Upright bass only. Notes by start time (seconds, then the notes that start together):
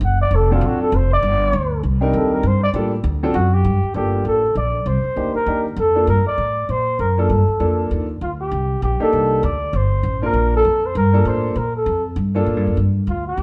0.01 F#1
0.31 F1
0.61 A1
0.80 muted upright bass stroke
0.92 F1
1.23 G1
1.53 D2
1.83 C2
2.13 D#2
2.43 G2
2.74 A2
3.04 D2
3.34 F#2
3.65 G2
3.83 muted upright bass stroke
3.94 G1
4.25 A1
4.55 A#1
4.86 C2
5.04 muted upright bass stroke
5.17 D2
5.35 muted upright bass stroke
5.46 D#2
5.76 F2
6.07 G2
6.26 muted upright bass stroke
6.38 A2
6.69 A#2
6.99 F#2
7.29 G2
7.48 muted upright bass stroke
7.60 F2
7.91 D#2
8.21 D2
8.51 C2
8.82 A#1
9.01 muted upright bass stroke
9.13 C2
9.43 D2
9.73 G1
10.03 A1
10.33 A#1
10.65 F2
10.95 G2
11.25 A2
11.56 A#2
11.86 F2
12.16 G2
12.46 A2
12.56 G2
12.67 F2
12.77 G2
13.07 D2
13.37 D#2